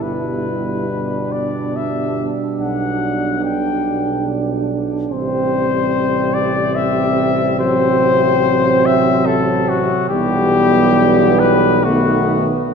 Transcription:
<<
  \new Staff \with { instrumentName = "Flugelhorn" } { \time 3/4 \key g \major \tempo 4 = 71 b'4. d''8 e''8 r8 | fis''4 g''4 r4 | c''4. d''8 e''4 | c''4. e''8 a'8 fis'8 |
g'4. b'8 fis'8 r8 | }
  \new Staff \with { instrumentName = "French horn section" } { \time 3/4 \key g \major e'4 d'2~ | d'2. | c'2.~ | c'2. |
b2 b4 | }
  \new Staff \with { instrumentName = "Euphonium" } { \clef bass \time 3/4 \key g \major g2.~ | g2~ g8 r8 | g2. | fis2. |
g2 a4 | }
  \new Staff \with { instrumentName = "Trombone" } { \clef bass \time 3/4 \key g \major b,2.~ | b,2~ b,8 r8 | c2.~ | c2. |
e2 dis4 | }
  \new Staff \with { instrumentName = "Tuba" } { \clef bass \time 3/4 \key g \major g,,2~ g,,8 r8 | b,,2. | a,,2.~ | a,,2. |
b,,2. | }
>>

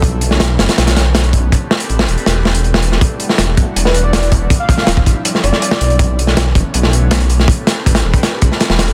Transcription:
<<
  \new Staff \with { instrumentName = "Digital synth lead" } { \time 4/4 \key e \minor \tempo 4 = 161 r1 | r1 | r2 r16 b'8 d''8 r8. | r16 f''8 r4. r16 d''4. |
r1 | r1 | }
  \new Staff \with { instrumentName = "Analog synth pad" } { \time 4/4 \key e \minor r4. <d e a b cis'>2~ <d e a b cis'>8 | r1 | r4. <g a d' e' fis'>2~ <g a d' e' fis'>8 | r4. <f g c' d' e'>2~ <f g c' d' e'>8 |
r4. <d e a b cis'>2~ <d e a b cis'>8 | r1 | }
  \new Staff \with { instrumentName = "Detuned saw bass" } { \clef bass \time 4/4 \key e \minor b,,4 b,,8 fis,,16 r16 b,,2 | r4 a,,8 e,,16 r16 e,,2 | r4 e,,8 b,,16 r16 e,,2 | r4 d,,8 a,,16 r8. f,,16 r8. b,,8~ |
b,,4 b,,8 fis,,16 r16 b,,2 | r4 a,,8 e,,16 r8. c,16 r8 e,,8. | }
  \new DrumStaff \with { instrumentName = "Drums" } \drummode { \time 4/4 <hh bd>8 hh16 sn16 <hh sn>8 <hh sn>16 <hh sn>16 <hh sn>16 <hh sn>16 <hh sn>8 <hh sn>16 hh16 <hh bd>8 | <hh bd>8 sn16 hh16 hh16 sn16 hh16 hh16 <hh sn>8 sn16 hh16 hh16 sn16 hh16 sn16 | <hh bd>8 hh16 sn16 <hh sn>8 <hh bd>8 hh16 sn16 hh8 <hh sn>16 hh16 <hh bd>8 | <hh bd>8 <hh bd>16 sn16 <hh sn>16 bd16 <hh bd>8 hh16 sn16 hh16 sn16 hh16 sn16 hh16 hh16 |
<hh bd>8 hh16 sn16 <hh sn>8 <hh bd>8 hh16 sn16 hh8 <hh sn>16 hh16 hh16 sn16 | <hh bd>8 <hh sn>8 <hh bd>16 <hh sn>8 <hh bd>16 <hh sn>8 <hh bd>16 sn16 <hh sn>16 sn16 <hh sn>16 hh16 | }
>>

